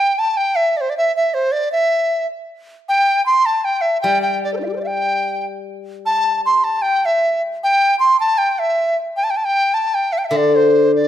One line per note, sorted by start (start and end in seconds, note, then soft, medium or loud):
0.00 0.20 G5 medium
0.19 0.39 A5 medium
0.37 0.57 G5 medium
0.56 0.78 E5 medium
0.77 0.82 D5 medium
0.81 0.91 C5 medium
0.90 0.97 D5 medium
0.97 1.15 E5 medium
1.16 1.36 E5 medium
1.34 1.53 C5 medium
1.52 1.71 D5 medium
1.72 2.26 E5 medium
2.89 3.25 G5 medium
3.26 3.47 C6 medium
3.46 3.66 A5 medium
3.64 3.83 G5 medium
3.81 4.01 E5 medium
4.01 6.42 G3 medium
4.01 4.21 G5 medium
4.22 4.42 G5 medium
4.44 4.53 D5 medium
4.54 4.56 A4 soft
4.54 4.59 C5 soft
4.60 4.63 D4 soft
4.60 4.64 E5 medium
4.65 4.68 E4 soft
4.65 4.73 G4 soft
4.73 4.75 A4 soft
4.73 4.80 C5 soft
4.81 4.83 D5 soft
4.81 4.88 E5 soft
4.87 5.46 G5 medium
6.06 6.41 A5 medium
6.46 6.66 C6 medium
6.64 6.83 A5 medium
6.82 7.07 G5 medium
7.05 7.42 E5 medium
7.63 7.98 G5 medium
7.99 8.17 C6 medium
8.20 8.40 A5 medium
8.38 8.51 G5 medium
8.51 8.60 G5 medium
8.59 8.97 E5 medium
9.17 9.25 G5 medium
9.24 9.32 A5 medium
9.30 9.38 G5 medium
9.37 9.46 A5 medium
9.45 9.76 G5 medium
9.74 9.96 A5 medium
9.94 10.14 G5 medium
10.13 10.20 E5 medium
10.18 10.26 G5 medium
10.25 10.28 E5 medium
10.25 10.38 E5 medium
10.31 11.08 D3 medium
10.36 10.57 D5 medium
10.56 10.94 C5 medium
10.96 11.08 D5 medium